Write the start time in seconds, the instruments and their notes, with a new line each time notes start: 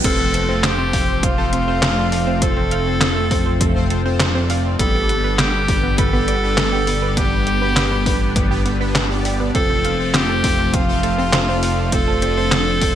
0.04 analog synth bass F1, analog synth pad F3 A3 C4, synth arpeggio sound C4, analog polysynth C4 F4 A4 C5, tenor saxophone A4, kick, closed hi-hat, crash
0.34 synth arpeggio sound A4, closed hi-hat
0.49 synth arpeggio sound C4, analog polysynth C4 F4 A4 C5
0.64 tenor saxophone G4, synth arpeggio sound C5, snare, clap, closed hi-hat
0.78 synth arpeggio sound C4
0.93 analog polysynth C4 F4 A4 C5, synth arpeggio sound F5, kick, open hi-hat
1.23 synth arpeggio sound C4, tenor saxophone F4, kick, closed hi-hat
1.38 analog polysynth C4 F4 A4 C5, synth arpeggio sound A4
1.53 analog polysynth C4 F4 A4 C5, synth arpeggio sound C4, closed hi-hat
1.68 analog polysynth C4 F4 A4 C5, synth arpeggio sound C5
1.82 synth arpeggio sound C4, snare, clap, closed hi-hat
1.97 analog polysynth C4 F4 A4 D5
2.12 synth arpeggio sound A4, open hi-hat
2.27 synth arpeggio sound C4
2.42 analog polysynth C4 F4 A4 C5, tenor saxophone A4, synth arpeggio sound C5, kick, closed hi-hat
2.57 synth arpeggio sound C4
2.71 synth arpeggio sound F5, closed hi-hat
2.86 analog polysynth C4 F4 A4 C5
3.01 synth arpeggio sound C4, snare, clap, closed hi-hat
3.16 synth arpeggio sound A4
3.31 analog polysynth C4 F4 A4 C5, synth arpeggio sound C4, kick, open hi-hat
3.46 synth arpeggio sound C5
3.61 synth arpeggio sound C4, kick, closed hi-hat
3.75 analog polysynth C4 F4 A4 C5
3.90 analog polysynth C4 F4 A4 C5, synth arpeggio sound A4, closed hi-hat
4.05 analog polysynth C4 F4 A4 C5, synth arpeggio sound C4
4.20 synth arpeggio sound C5, snare, clap, closed hi-hat
4.35 analog polysynth C4 F4 A4 D5, synth arpeggio sound C4
4.50 synth arpeggio sound F5, open hi-hat
4.79 analog synth bass G1, analog synth pad D3 G3 B3, analog polysynth B3 D4 G4 B4, synth arpeggio sound B3, tenor saxophone A4, kick, closed hi-hat
4.95 synth arpeggio sound G4
5.09 synth arpeggio sound B3, closed hi-hat
5.24 analog polysynth B3 D4 G4 B4, synth arpeggio sound B4
5.39 synth arpeggio sound B3, tenor saxophone G4, snare, clap, closed hi-hat
5.68 analog polysynth B3 D4 G4 B4, synth arpeggio sound G4, kick, open hi-hat
5.83 synth arpeggio sound B3
5.98 tenor saxophone A4, synth arpeggio sound B4, kick, closed hi-hat
6.13 analog polysynth B3 D4 G4 B4, synth arpeggio sound B3
6.28 analog polysynth B3 D4 G4 B4, synth arpeggio sound D5, closed hi-hat
6.43 analog polysynth B3 D4 G4 B4
6.58 synth arpeggio sound B3, snare, clap, closed hi-hat
6.72 analog polysynth B3 D4 G4 D5, synth arpeggio sound G4
6.87 synth arpeggio sound B3, open hi-hat
7.02 synth arpeggio sound B4
7.17 analog polysynth B3 D4 G4 B4, synth arpeggio sound B3, tenor saxophone G4, kick, closed hi-hat
7.47 synth arpeggio sound G4, closed hi-hat
7.61 analog polysynth B3 D4 G4 B4, synth arpeggio sound B3
7.76 synth arpeggio sound B4, snare, clap, closed hi-hat
7.91 synth arpeggio sound B3
8.06 analog polysynth B3 D4 G4 B4, synth arpeggio sound D5, kick, open hi-hat
8.36 synth arpeggio sound B3, kick, closed hi-hat
8.51 analog polysynth B3 D4 G4 B4, synth arpeggio sound G4
8.65 synth arpeggio sound B3, analog polysynth B3 D4 G4 B4, closed hi-hat
8.80 analog polysynth B3 D4 G4 B4, synth arpeggio sound B4
8.95 synth arpeggio sound B3, snare, clap, closed hi-hat
9.10 analog polysynth B3 D4 G4 D5
9.25 synth arpeggio sound G4, open hi-hat
9.40 synth arpeggio sound B3
9.55 analog synth bass F1, analog synth pad F3 A3 C4, analog polysynth C4 F4 A4 C5, tenor saxophone A4, synth arpeggio sound C5, kick, closed hi-hat
9.70 synth arpeggio sound C4
9.85 synth arpeggio sound F5, closed hi-hat
9.99 analog polysynth C4 F4 A4 C5
10.14 synth arpeggio sound C4, tenor saxophone G4, snare, clap, closed hi-hat
10.29 synth arpeggio sound A4
10.44 analog polysynth C4 F4 A4 C5, synth arpeggio sound C4, kick, open hi-hat
10.59 synth arpeggio sound C5
10.74 synth arpeggio sound C4, tenor saxophone F4, kick, closed hi-hat
10.88 analog polysynth C4 F4 A4 C5
11.03 analog polysynth C4 F4 A4 C5, synth arpeggio sound A4, closed hi-hat
11.18 analog polysynth C4 F4 A4 C5, synth arpeggio sound C4
11.33 synth arpeggio sound C5, snare, clap, closed hi-hat
11.48 analog polysynth C4 F4 A4 D5, synth arpeggio sound C4
11.63 synth arpeggio sound F5, open hi-hat
11.92 analog polysynth C4 F4 A4 C5, synth arpeggio sound C4, analog synth pad D4, tenor saxophone A4, kick, closed hi-hat
12.08 synth arpeggio sound A4
12.22 synth arpeggio sound C4, closed hi-hat
12.37 analog polysynth C4 F4 A4 C5, synth arpeggio sound C5
12.52 synth arpeggio sound C4, snare, clap, closed hi-hat
12.81 analog polysynth C4 F4 A4 C5, synth arpeggio sound A4, kick, open hi-hat